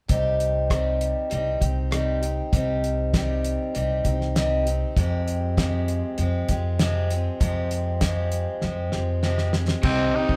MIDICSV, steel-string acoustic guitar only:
0, 0, Header, 1, 2, 480
1, 0, Start_track
1, 0, Key_signature, -3, "minor"
1, 0, Tempo, 609137
1, 80, Time_signature, 4, 2, 24, 8
1, 8165, End_track
2, 0, Start_track
2, 0, Title_t, "Steel-string acoustic guitar"
2, 0, Program_c, 0, 25
2, 66, Note_on_c, 0, 48, 69
2, 76, Note_on_c, 0, 60, 63
2, 79, Note_on_c, 0, 55, 62
2, 83, Note_on_c, 0, 63, 81
2, 89, Note_on_c, 0, 67, 76
2, 542, Note_off_c, 0, 48, 0
2, 550, Note_off_c, 0, 63, 0
2, 551, Note_on_c, 0, 48, 57
2, 554, Note_off_c, 0, 55, 0
2, 557, Note_on_c, 0, 55, 63
2, 559, Note_off_c, 0, 60, 0
2, 559, Note_on_c, 0, 63, 64
2, 562, Note_on_c, 0, 60, 71
2, 564, Note_off_c, 0, 67, 0
2, 567, Note_on_c, 0, 67, 70
2, 1020, Note_off_c, 0, 55, 0
2, 1023, Note_on_c, 0, 55, 61
2, 1035, Note_off_c, 0, 48, 0
2, 1036, Note_off_c, 0, 60, 0
2, 1039, Note_on_c, 0, 60, 56
2, 1040, Note_off_c, 0, 63, 0
2, 1049, Note_on_c, 0, 63, 66
2, 1051, Note_off_c, 0, 67, 0
2, 1055, Note_on_c, 0, 67, 65
2, 1254, Note_off_c, 0, 67, 0
2, 1264, Note_on_c, 0, 67, 47
2, 1271, Note_off_c, 0, 63, 0
2, 1272, Note_off_c, 0, 55, 0
2, 1279, Note_off_c, 0, 60, 0
2, 1280, Note_on_c, 0, 63, 40
2, 1292, Note_on_c, 0, 60, 31
2, 1504, Note_on_c, 0, 48, 69
2, 1506, Note_off_c, 0, 60, 0
2, 1509, Note_off_c, 0, 63, 0
2, 1510, Note_off_c, 0, 67, 0
2, 1511, Note_on_c, 0, 55, 72
2, 1515, Note_on_c, 0, 60, 69
2, 1518, Note_on_c, 0, 63, 70
2, 1519, Note_on_c, 0, 67, 72
2, 1737, Note_off_c, 0, 67, 0
2, 1746, Note_on_c, 0, 67, 45
2, 1751, Note_off_c, 0, 63, 0
2, 1752, Note_off_c, 0, 48, 0
2, 1755, Note_off_c, 0, 55, 0
2, 1758, Note_off_c, 0, 60, 0
2, 1761, Note_on_c, 0, 63, 39
2, 1775, Note_on_c, 0, 60, 35
2, 1990, Note_on_c, 0, 48, 70
2, 1992, Note_off_c, 0, 60, 0
2, 1993, Note_off_c, 0, 67, 0
2, 1994, Note_off_c, 0, 63, 0
2, 1994, Note_on_c, 0, 55, 67
2, 2001, Note_on_c, 0, 60, 72
2, 2004, Note_on_c, 0, 63, 69
2, 2004, Note_on_c, 0, 67, 76
2, 2463, Note_off_c, 0, 48, 0
2, 2473, Note_on_c, 0, 48, 66
2, 2477, Note_off_c, 0, 55, 0
2, 2477, Note_off_c, 0, 63, 0
2, 2479, Note_off_c, 0, 60, 0
2, 2481, Note_on_c, 0, 55, 67
2, 2482, Note_on_c, 0, 60, 72
2, 2487, Note_on_c, 0, 63, 64
2, 2489, Note_off_c, 0, 67, 0
2, 2493, Note_on_c, 0, 67, 66
2, 2947, Note_off_c, 0, 55, 0
2, 2950, Note_off_c, 0, 60, 0
2, 2950, Note_on_c, 0, 55, 57
2, 2953, Note_on_c, 0, 60, 58
2, 2954, Note_off_c, 0, 63, 0
2, 2957, Note_off_c, 0, 48, 0
2, 2963, Note_on_c, 0, 63, 62
2, 2969, Note_off_c, 0, 67, 0
2, 2972, Note_on_c, 0, 67, 64
2, 3174, Note_off_c, 0, 67, 0
2, 3183, Note_on_c, 0, 67, 46
2, 3191, Note_off_c, 0, 63, 0
2, 3195, Note_off_c, 0, 55, 0
2, 3197, Note_off_c, 0, 60, 0
2, 3201, Note_on_c, 0, 63, 41
2, 3216, Note_on_c, 0, 60, 31
2, 3431, Note_on_c, 0, 48, 74
2, 3432, Note_off_c, 0, 67, 0
2, 3434, Note_off_c, 0, 60, 0
2, 3438, Note_off_c, 0, 63, 0
2, 3440, Note_on_c, 0, 55, 67
2, 3444, Note_on_c, 0, 60, 79
2, 3447, Note_on_c, 0, 63, 80
2, 3449, Note_on_c, 0, 67, 80
2, 3656, Note_off_c, 0, 67, 0
2, 3666, Note_on_c, 0, 67, 42
2, 3674, Note_off_c, 0, 63, 0
2, 3676, Note_off_c, 0, 48, 0
2, 3681, Note_off_c, 0, 55, 0
2, 3683, Note_off_c, 0, 60, 0
2, 3684, Note_on_c, 0, 63, 38
2, 3691, Note_on_c, 0, 60, 37
2, 3912, Note_on_c, 0, 41, 75
2, 3914, Note_off_c, 0, 67, 0
2, 3917, Note_on_c, 0, 48, 78
2, 3920, Note_off_c, 0, 60, 0
2, 3923, Note_off_c, 0, 63, 0
2, 3923, Note_on_c, 0, 56, 72
2, 3924, Note_on_c, 0, 53, 71
2, 3929, Note_on_c, 0, 60, 70
2, 3931, Note_on_c, 0, 67, 75
2, 4381, Note_off_c, 0, 41, 0
2, 4383, Note_off_c, 0, 48, 0
2, 4389, Note_off_c, 0, 53, 0
2, 4390, Note_on_c, 0, 41, 65
2, 4393, Note_on_c, 0, 48, 70
2, 4396, Note_off_c, 0, 56, 0
2, 4398, Note_on_c, 0, 53, 61
2, 4399, Note_off_c, 0, 60, 0
2, 4402, Note_on_c, 0, 60, 72
2, 4405, Note_off_c, 0, 67, 0
2, 4405, Note_on_c, 0, 56, 64
2, 4408, Note_on_c, 0, 67, 76
2, 4867, Note_off_c, 0, 53, 0
2, 4876, Note_off_c, 0, 41, 0
2, 4877, Note_on_c, 0, 53, 61
2, 4878, Note_off_c, 0, 48, 0
2, 4878, Note_off_c, 0, 56, 0
2, 4888, Note_on_c, 0, 56, 64
2, 4892, Note_off_c, 0, 60, 0
2, 4895, Note_on_c, 0, 60, 64
2, 4898, Note_off_c, 0, 67, 0
2, 4901, Note_on_c, 0, 67, 68
2, 5113, Note_off_c, 0, 67, 0
2, 5119, Note_off_c, 0, 53, 0
2, 5123, Note_on_c, 0, 67, 44
2, 5125, Note_off_c, 0, 56, 0
2, 5125, Note_off_c, 0, 60, 0
2, 5134, Note_on_c, 0, 60, 39
2, 5136, Note_on_c, 0, 56, 46
2, 5144, Note_on_c, 0, 53, 37
2, 5359, Note_off_c, 0, 53, 0
2, 5359, Note_off_c, 0, 56, 0
2, 5359, Note_on_c, 0, 41, 76
2, 5362, Note_on_c, 0, 48, 69
2, 5363, Note_off_c, 0, 60, 0
2, 5363, Note_off_c, 0, 67, 0
2, 5368, Note_on_c, 0, 53, 67
2, 5369, Note_on_c, 0, 56, 86
2, 5372, Note_on_c, 0, 60, 80
2, 5374, Note_on_c, 0, 67, 86
2, 5596, Note_off_c, 0, 67, 0
2, 5600, Note_off_c, 0, 41, 0
2, 5602, Note_off_c, 0, 48, 0
2, 5605, Note_off_c, 0, 53, 0
2, 5605, Note_on_c, 0, 67, 44
2, 5606, Note_off_c, 0, 56, 0
2, 5607, Note_off_c, 0, 60, 0
2, 5616, Note_on_c, 0, 60, 39
2, 5620, Note_on_c, 0, 56, 37
2, 5627, Note_on_c, 0, 53, 35
2, 5826, Note_off_c, 0, 53, 0
2, 5829, Note_off_c, 0, 56, 0
2, 5833, Note_on_c, 0, 41, 68
2, 5833, Note_on_c, 0, 48, 69
2, 5835, Note_off_c, 0, 67, 0
2, 5835, Note_on_c, 0, 53, 77
2, 5837, Note_off_c, 0, 60, 0
2, 5838, Note_on_c, 0, 56, 79
2, 5845, Note_on_c, 0, 67, 76
2, 5847, Note_on_c, 0, 60, 76
2, 6307, Note_off_c, 0, 41, 0
2, 6310, Note_off_c, 0, 48, 0
2, 6317, Note_on_c, 0, 41, 71
2, 6318, Note_off_c, 0, 56, 0
2, 6319, Note_off_c, 0, 53, 0
2, 6319, Note_on_c, 0, 48, 62
2, 6324, Note_off_c, 0, 67, 0
2, 6325, Note_off_c, 0, 60, 0
2, 6327, Note_on_c, 0, 53, 75
2, 6327, Note_on_c, 0, 56, 68
2, 6333, Note_on_c, 0, 60, 73
2, 6336, Note_on_c, 0, 67, 74
2, 6786, Note_off_c, 0, 53, 0
2, 6796, Note_off_c, 0, 56, 0
2, 6796, Note_on_c, 0, 53, 57
2, 6800, Note_off_c, 0, 41, 0
2, 6801, Note_off_c, 0, 48, 0
2, 6804, Note_off_c, 0, 60, 0
2, 6806, Note_on_c, 0, 56, 53
2, 6809, Note_off_c, 0, 67, 0
2, 6813, Note_on_c, 0, 60, 61
2, 6821, Note_on_c, 0, 67, 57
2, 7021, Note_off_c, 0, 67, 0
2, 7031, Note_on_c, 0, 67, 44
2, 7033, Note_off_c, 0, 60, 0
2, 7039, Note_off_c, 0, 53, 0
2, 7040, Note_off_c, 0, 56, 0
2, 7042, Note_on_c, 0, 60, 43
2, 7049, Note_on_c, 0, 56, 34
2, 7059, Note_on_c, 0, 53, 38
2, 7268, Note_off_c, 0, 56, 0
2, 7269, Note_off_c, 0, 53, 0
2, 7271, Note_on_c, 0, 41, 60
2, 7272, Note_off_c, 0, 60, 0
2, 7272, Note_on_c, 0, 48, 69
2, 7277, Note_off_c, 0, 67, 0
2, 7278, Note_on_c, 0, 53, 79
2, 7278, Note_on_c, 0, 56, 79
2, 7282, Note_on_c, 0, 60, 80
2, 7287, Note_on_c, 0, 67, 73
2, 7500, Note_off_c, 0, 67, 0
2, 7507, Note_off_c, 0, 60, 0
2, 7510, Note_on_c, 0, 67, 45
2, 7516, Note_off_c, 0, 56, 0
2, 7516, Note_on_c, 0, 60, 39
2, 7517, Note_off_c, 0, 41, 0
2, 7517, Note_off_c, 0, 48, 0
2, 7521, Note_off_c, 0, 53, 0
2, 7526, Note_on_c, 0, 56, 42
2, 7748, Note_off_c, 0, 60, 0
2, 7750, Note_on_c, 0, 48, 69
2, 7752, Note_on_c, 0, 51, 63
2, 7755, Note_off_c, 0, 56, 0
2, 7756, Note_off_c, 0, 67, 0
2, 7758, Note_on_c, 0, 60, 76
2, 7764, Note_on_c, 0, 63, 73
2, 7768, Note_on_c, 0, 67, 82
2, 7982, Note_off_c, 0, 67, 0
2, 7991, Note_on_c, 0, 67, 45
2, 7995, Note_off_c, 0, 63, 0
2, 7997, Note_off_c, 0, 48, 0
2, 7998, Note_off_c, 0, 51, 0
2, 8000, Note_off_c, 0, 60, 0
2, 8005, Note_on_c, 0, 63, 40
2, 8017, Note_on_c, 0, 60, 37
2, 8165, Note_off_c, 0, 60, 0
2, 8165, Note_off_c, 0, 63, 0
2, 8165, Note_off_c, 0, 67, 0
2, 8165, End_track
0, 0, End_of_file